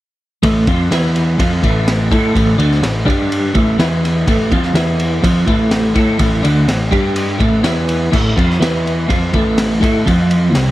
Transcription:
0.43 A1 A2 E3 A3, kick, ride
0.67 F2 F3 C4 F4, kick, ride
0.91 E2 E3 B3 E4, snare, ride
1.16 ride
1.38 F2 F3 C4 F4, kick, ride
1.63 A1 A2 E3 A3, kick, ride
1.88 snare, ride
2.11 A2 A3 E4 A4, kick, ride
2.35 A1 A2 E3 A3, kick, ride
2.57 D2 D3 A3 D4, ride
2.72 snare
2.82 A1 A2 E3, snare, ride
3.05 G2 G3 D4 G4, kick
3.10 ride
3.32 ride
3.54 A1 A2 E3 A3, kick, ride
3.79 E2 E3 B3 E4, snare, ride
4.05 snare, ride
4.27 A1 A2 E3 A3, kick, ride
4.52 F2 F3 C4 F4, kick, ride
4.63 snare
4.73 E2 E3 B3 E4, snare, ride
5.00 ride
5.22 F2 F3 C4 F4, kick, ride
5.46 A1 A2 E3 A3, kick, ride
5.71 snare, ride
5.94 A2 A3 E4 A4, kick, snare, ride
6.18 A1 A2 E3 A3, kick, ride
6.43 D2 D3 A3 D4, ride
6.68 A1 A2 E3, snare, ride
6.91 G2 G3 D4 G4, kick, ride
7.16 ride
7.39 A1 A2 E3 A3, kick, ride
7.62 E2 E3 B3 E4, snare, ride
7.89 ride
8.11 A1 A2 E3 A3, kick, crash
8.37 F2 F3 C4 F4, kick, ride
8.51 snare
8.60 E2 E3 B3 E4, snare, ride
8.87 ride
9.08 F2 F3 C4 F4, kick, ride
9.33 A1 A2 E3 A3, kick, ride
9.58 snare, ride
9.81 A2 A3 E4 A4, kick, snare, ride
10.06 F2 F3 C4 F4, kick, ride
10.31 ride
10.54 C2 C3 G3 C4, snare, ride

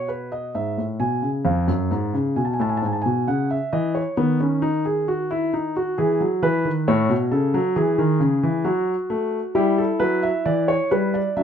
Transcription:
Already playing: B2
0.08 B4
0.32 D#5
0.55 G#2 E5
0.78 A2
1.00 B2 G#5
1.22 C#3
1.45 F2 F5
1.68 F#2
1.91 G#2
2.14 C#3
2.36 B2 G#5
2.45 A5
2.53 G#5
2.60 A2 A5
2.69 G#5
2.77 A5
2.82 G#2
2.86 G#5
2.93 A5
3.02 G#5
3.06 B2
3.27 C#3 F#5
3.51 E5
3.73 E3 D#5
3.95 C#5
4.17 D#3 B3
4.40 C#4
4.62 D#4
4.85 G#4
5.08 F#4
5.31 E4
5.53 D#4
5.76 F#4
5.98 E3 G#4
6.21 F#3
6.42 E3 B4
6.65 D#3
6.88 A2 C#5
7.09 B2
7.32 C#3 A4
7.54 F#3
7.76 E3 G#4
7.98 D#3
8.20 C#3
8.43 E3
8.65 F#3 F#4
9.10 A3
9.55 G3 E4 G4
9.78 A4
10.00 F#3 B4
10.23 E5
10.46 E3 D5
10.68 C#5
10.91 G3 B4
11.14 D5
11.37 F#3 D4 E5

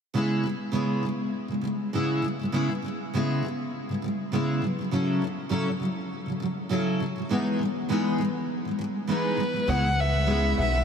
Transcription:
0.14 C#3 G#3 B3 E4 G#4
0.43 C#3 G#3
0.72 C#3 G#3 B3 E4 G#4
1.03 C#3 G#3
1.48 C#3 G#3
1.61 C#3 G#3
1.93 C#3 G#3 B3 E4 G#4
2.22 C#3 G#3
2.39 C#3 G#3
2.52 C#3 G#3 B3 E4 G#4
2.69 C#3 G#3
2.83 C#3 G#3
3.14 C#3 G#3 B3 E4 G#4
3.43 C#3 G#3
3.89 C#3 G#3
4.02 C#3 G#3
4.32 C#3 G#3 B3 E4 G#4
4.62 C#3 F#3
4.79 C#3 F#3
4.91 C#3 F#3 C#4 E4 A4
5.22 C#3 F#3
5.49 C#3 F#3 C#4 E4 A4
5.66 C#3 F#3
5.80 C#3 F#3
6.26 C#3 F#3
6.40 C#3 F#3
6.69 C#3 F#3 C#4 E4 A4
7.00 C#3 F#3
7.16 C#3 F#3
7.29 E3 G#3 B3 D#4 G#4
7.59 E3 G#3
7.89 E3 G#3 B3 D#4 G#4
8.18 E3 G#3
8.65 E3 G#3
8.79 E3 G#3
9.07 E3 G#3 B3 D#4 G#4 B4
9.37 E3 G#3
9.53 E3 G#3
9.67 C#2 C#3 G#3 B3 E4 G#4 F#5
9.82 C#3 G#3
10.00 E5
10.12 C#3 G#3
10.26 C#3 G#3 B3 E4 G#4
10.55 B1 C#3 G#3
10.60 E5
10.71 C#3 G#3

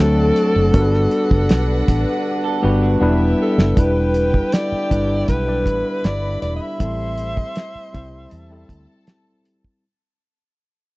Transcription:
Already playing: D3 F#3 A3 F#4 A4
0.00 D2 C4 D4 F#4 D5 A5
0.06 A4
0.36 closed hi-hat
0.56 F#1
0.73 G1 G3 B3 D4 F#4 A#4 B4 F#5, kick, closed hi-hat
0.82 B4
0.94 snare
1.11 closed hi-hat
1.31 F#1, kick
1.49 B1, snare, closed hi-hat
1.88 A1, kick, closed hi-hat
2.44 A4
2.62 G1 G3 B3 D4 F#4 G4 B4
2.82 F#3 D4
3.00 E1 G3 B3 D4 E4 G4 B4 E5
3.42 A4
3.58 F#1, snare
3.76 E1 D3 G3 B3 D4 E4 G4 B4 G5, kick, closed hi-hat
4.14 closed hi-hat
4.34 kick
4.52 D5, snare, closed hi-hat
4.72 muted fingered electric bass stroke
4.90 G1 G3 D4 E4 B4, kick, closed hi-hat
5.28 B1 B4, kick, closed hi-hat
5.46 G3 D4 E4 D5
5.66 A1 B4 B5, kick, closed hi-hat
6.04 G1 D5, snare, closed hi-hat
6.42 E1 D5, closed hi-hat
6.56 D#5
6.62 E5
6.79 A1 C3 G3 A3 C4 E4 A4 C5 C6, kick, closed hi-hat
7.18 closed hi-hat
7.37 kick
7.56 snare, closed hi-hat
7.75 muted fingered electric bass stroke
7.93 C2 G3 C4 E4 C5, kick, closed hi-hat
8.31 E2 A4 A5, closed hi-hat
8.50 G3 C4 E4 A4
8.69 D2, kick, closed hi-hat
9.07 snare, closed hi-hat
9.45 closed hi-hat
9.64 kick

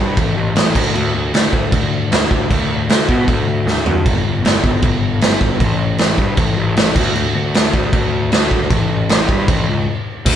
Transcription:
Already playing: G2
0.17 A1, kick, crash
0.37 A1
0.56 A1, snare, crash
0.75 D2, kick, crash
0.94 D2, crash
1.15 D2
1.34 D2, snare, crash
1.53 D2, kick
1.72 D2, kick, crash
2.12 D2, snare, crash
2.31 kick
2.51 D2, kick, crash
2.89 D2, snare, crash
3.09 B2, kick
3.28 D2, kick, crash
3.47 D2
3.66 D2, snare
3.86 D2, floor tom
4.06 G1, kick, crash
4.25 G1
4.44 G1, snare, crash
4.64 G1, kick
4.82 G1, kick, crash
5.21 G1, snare, crash
5.41 kick
5.60 A1, kick, crash
5.98 A1, snare, crash
6.18 G2, kick
6.37 A1, kick, crash
6.57 A1
6.76 A1, snare, crash
6.95 D2, kick, crash
7.16 D2, crash
7.35 D2
7.54 D2, snare, crash
7.74 D2, kick
7.93 D2, kick, crash
8.32 D2, snare, crash
8.51 kick
8.70 A1, kick, crash
9.09 A1, snare, crash
9.29 G2, kick
9.48 A1, kick, crash
9.68 C#2
10.25 D2, kick, crash

